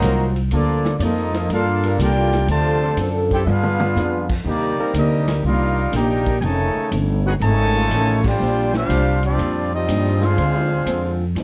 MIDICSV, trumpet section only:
0, 0, Header, 1, 2, 480
1, 0, Start_track
1, 0, Key_signature, -2, "major"
1, 0, Tempo, 493016
1, 501, Time_signature, 4, 2, 24, 8
1, 11132, End_track
2, 0, Start_track
2, 0, Title_t, "Trumpet section"
2, 0, Program_c, 0, 61
2, 0, Note_on_c, 0, 66, 106
2, 0, Note_on_c, 0, 72, 103
2, 0, Note_on_c, 0, 75, 100
2, 0, Note_on_c, 0, 82, 112
2, 314, Note_off_c, 0, 66, 0
2, 314, Note_off_c, 0, 72, 0
2, 314, Note_off_c, 0, 82, 0
2, 316, Note_off_c, 0, 75, 0
2, 510, Note_on_c, 0, 65, 89
2, 512, Note_on_c, 0, 69, 82
2, 512, Note_on_c, 0, 74, 98
2, 513, Note_on_c, 0, 58, 83
2, 912, Note_off_c, 0, 65, 0
2, 913, Note_off_c, 0, 69, 0
2, 913, Note_off_c, 0, 74, 0
2, 914, Note_off_c, 0, 58, 0
2, 946, Note_on_c, 0, 74, 71
2, 985, Note_off_c, 0, 74, 0
2, 998, Note_on_c, 0, 75, 97
2, 999, Note_on_c, 0, 65, 78
2, 1000, Note_on_c, 0, 69, 81
2, 1001, Note_on_c, 0, 58, 84
2, 1469, Note_off_c, 0, 75, 0
2, 1470, Note_off_c, 0, 65, 0
2, 1470, Note_off_c, 0, 69, 0
2, 1471, Note_off_c, 0, 58, 0
2, 1482, Note_on_c, 0, 70, 83
2, 1483, Note_on_c, 0, 69, 88
2, 1484, Note_on_c, 0, 62, 84
2, 1485, Note_on_c, 0, 77, 97
2, 1918, Note_off_c, 0, 70, 0
2, 1919, Note_off_c, 0, 62, 0
2, 1919, Note_off_c, 0, 69, 0
2, 1920, Note_off_c, 0, 77, 0
2, 1959, Note_on_c, 0, 74, 98
2, 1962, Note_on_c, 0, 79, 110
2, 1963, Note_on_c, 0, 65, 91
2, 1963, Note_on_c, 0, 70, 91
2, 2396, Note_off_c, 0, 74, 0
2, 2398, Note_off_c, 0, 79, 0
2, 2399, Note_off_c, 0, 65, 0
2, 2399, Note_off_c, 0, 70, 0
2, 2435, Note_on_c, 0, 65, 96
2, 2435, Note_on_c, 0, 81, 110
2, 2437, Note_on_c, 0, 72, 100
2, 2442, Note_on_c, 0, 74, 100
2, 2907, Note_off_c, 0, 65, 0
2, 2907, Note_off_c, 0, 81, 0
2, 2908, Note_off_c, 0, 72, 0
2, 2911, Note_off_c, 0, 74, 0
2, 3243, Note_on_c, 0, 69, 88
2, 3243, Note_on_c, 0, 72, 92
2, 3243, Note_on_c, 0, 79, 108
2, 3244, Note_on_c, 0, 64, 93
2, 3337, Note_off_c, 0, 72, 0
2, 3337, Note_off_c, 0, 79, 0
2, 3338, Note_off_c, 0, 64, 0
2, 3338, Note_off_c, 0, 69, 0
2, 3354, Note_on_c, 0, 76, 74
2, 3389, Note_off_c, 0, 76, 0
2, 3392, Note_on_c, 0, 62, 97
2, 3394, Note_on_c, 0, 68, 86
2, 3395, Note_on_c, 0, 71, 93
2, 3396, Note_on_c, 0, 77, 107
2, 4192, Note_off_c, 0, 62, 0
2, 4193, Note_off_c, 0, 68, 0
2, 4193, Note_off_c, 0, 71, 0
2, 4194, Note_off_c, 0, 77, 0
2, 4356, Note_on_c, 0, 58, 86
2, 4359, Note_on_c, 0, 67, 82
2, 4360, Note_on_c, 0, 74, 96
2, 4363, Note_on_c, 0, 63, 82
2, 4794, Note_off_c, 0, 58, 0
2, 4796, Note_off_c, 0, 67, 0
2, 4797, Note_off_c, 0, 74, 0
2, 4798, Note_off_c, 0, 63, 0
2, 4833, Note_on_c, 0, 67, 79
2, 4835, Note_on_c, 0, 74, 79
2, 4838, Note_on_c, 0, 58, 78
2, 4838, Note_on_c, 0, 75, 92
2, 5273, Note_off_c, 0, 67, 0
2, 5274, Note_off_c, 0, 74, 0
2, 5275, Note_off_c, 0, 58, 0
2, 5276, Note_off_c, 0, 75, 0
2, 5312, Note_on_c, 0, 63, 88
2, 5313, Note_on_c, 0, 70, 81
2, 5314, Note_on_c, 0, 74, 83
2, 5316, Note_on_c, 0, 77, 100
2, 5752, Note_off_c, 0, 63, 0
2, 5753, Note_off_c, 0, 70, 0
2, 5753, Note_off_c, 0, 74, 0
2, 5754, Note_off_c, 0, 77, 0
2, 5793, Note_on_c, 0, 74, 95
2, 5795, Note_on_c, 0, 70, 93
2, 5796, Note_on_c, 0, 79, 113
2, 5797, Note_on_c, 0, 63, 97
2, 6223, Note_off_c, 0, 74, 0
2, 6224, Note_off_c, 0, 70, 0
2, 6224, Note_off_c, 0, 79, 0
2, 6225, Note_off_c, 0, 63, 0
2, 6229, Note_on_c, 0, 80, 76
2, 6259, Note_off_c, 0, 80, 0
2, 6268, Note_on_c, 0, 81, 113
2, 6270, Note_on_c, 0, 73, 100
2, 6271, Note_on_c, 0, 63, 98
2, 6271, Note_on_c, 0, 80, 100
2, 6743, Note_off_c, 0, 81, 0
2, 6744, Note_off_c, 0, 73, 0
2, 6745, Note_off_c, 0, 63, 0
2, 6745, Note_off_c, 0, 80, 0
2, 7074, Note_on_c, 0, 71, 84
2, 7075, Note_on_c, 0, 68, 88
2, 7075, Note_on_c, 0, 78, 96
2, 7077, Note_on_c, 0, 63, 88
2, 7141, Note_off_c, 0, 71, 0
2, 7142, Note_off_c, 0, 68, 0
2, 7142, Note_off_c, 0, 78, 0
2, 7144, Note_off_c, 0, 63, 0
2, 7226, Note_on_c, 0, 81, 120
2, 7227, Note_on_c, 0, 73, 101
2, 7227, Note_on_c, 0, 80, 100
2, 7229, Note_on_c, 0, 63, 99
2, 7991, Note_off_c, 0, 73, 0
2, 7991, Note_off_c, 0, 80, 0
2, 7991, Note_off_c, 0, 81, 0
2, 7992, Note_off_c, 0, 63, 0
2, 8048, Note_on_c, 0, 65, 93
2, 8048, Note_on_c, 0, 72, 95
2, 8048, Note_on_c, 0, 74, 94
2, 8052, Note_on_c, 0, 79, 118
2, 8517, Note_off_c, 0, 65, 0
2, 8517, Note_off_c, 0, 72, 0
2, 8517, Note_off_c, 0, 74, 0
2, 8519, Note_off_c, 0, 79, 0
2, 8527, Note_on_c, 0, 62, 98
2, 8529, Note_on_c, 0, 72, 91
2, 8530, Note_on_c, 0, 67, 94
2, 8530, Note_on_c, 0, 77, 105
2, 8964, Note_off_c, 0, 62, 0
2, 8965, Note_off_c, 0, 72, 0
2, 8965, Note_off_c, 0, 77, 0
2, 8966, Note_off_c, 0, 67, 0
2, 9010, Note_on_c, 0, 60, 84
2, 9010, Note_on_c, 0, 65, 88
2, 9012, Note_on_c, 0, 74, 98
2, 9014, Note_on_c, 0, 67, 88
2, 9446, Note_off_c, 0, 60, 0
2, 9446, Note_off_c, 0, 65, 0
2, 9447, Note_off_c, 0, 74, 0
2, 9448, Note_off_c, 0, 67, 0
2, 9490, Note_on_c, 0, 67, 88
2, 9492, Note_on_c, 0, 65, 88
2, 9493, Note_on_c, 0, 75, 104
2, 9496, Note_on_c, 0, 60, 88
2, 9959, Note_off_c, 0, 67, 0
2, 9960, Note_off_c, 0, 65, 0
2, 9960, Note_off_c, 0, 75, 0
2, 9961, Note_off_c, 0, 60, 0
2, 9965, Note_on_c, 0, 62, 83
2, 9965, Note_on_c, 0, 77, 95
2, 9966, Note_on_c, 0, 72, 90
2, 9968, Note_on_c, 0, 68, 84
2, 10917, Note_off_c, 0, 62, 0
2, 10917, Note_off_c, 0, 77, 0
2, 10918, Note_off_c, 0, 68, 0
2, 10918, Note_off_c, 0, 72, 0
2, 11132, End_track
0, 0, End_of_file